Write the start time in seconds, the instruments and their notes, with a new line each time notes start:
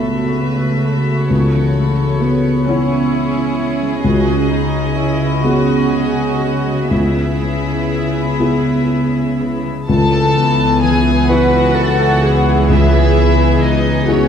Already playing: felt piano C#2 B3 A4 E5, harp C#3 A3 B3 A4 B4 E5, cello section C#3, viola section A3 F#4, violin section A4 E5
0.13 harp B4
0.38 violin section B4, harp E5
0.60 harp A4
0.84 harp B3, violin section A4
1.08 harp A3
1.30 felt piano C#2, harp C#3, viola section B3, violin section C#5
1.54 harp E3
1.77 viola section A3, harp B3
2.00 harp E4
2.21 viola section B3, harp C#5
2.46 harp B4
2.67 felt piano B3 E4 C#5, viola section C#4 E4, violin section G#4 C#5, harp C#5
2.92 harp B4
3.14 harp C#5
3.37 harp E4
3.59 harp B3
3.82 harp G#3
4.03 felt piano C#2, harp C#3, cello section C#3, viola section C#4 F#4, violin section D#5
4.27 harp G#3
4.49 harp B3, viola section D#4
4.73 harp F#4
4.95 viola section E4, harp G#4
5.20 harp B4
5.43 felt piano B3 F#4 G#4, violin section F#4, viola section F#4, harp G#4
5.68 harp B4
5.90 viola section G#4, harp G#4
6.16 harp F#4
6.39 harp B3, viola section F#4
6.66 harp G#3
6.90 felt piano C#2, harp C#3, viola section B3 E4, violin section G#4 E5
7.16 harp G#3
7.41 harp B3
7.66 harp C#4
7.91 harp G#4
8.15 harp B4
8.40 felt piano B3 E4 G#4, harp G#4
8.90 harp G#4
9.40 harp B3
9.65 harp G#3
9.88 felt piano C#2, double bass section C#2, harp C#3, viola section E3 B3, violin section A4 A5
10.36 harp B3
10.83 harp E3, violin section G#4 G#5
11.29 felt piano E4 B4, violin section F#4 F#5, cello section B4, harp B4
11.77 cello section A4
12.23 cello section G#4, harp B4
12.69 felt piano C#2, harp C#3, violin section E4 E5
13.17 harp B3
13.63 violin section D#4 D#5
14.08 violin section C#4 C#5, felt piano E4 G#4, cello section F#4, harp G#5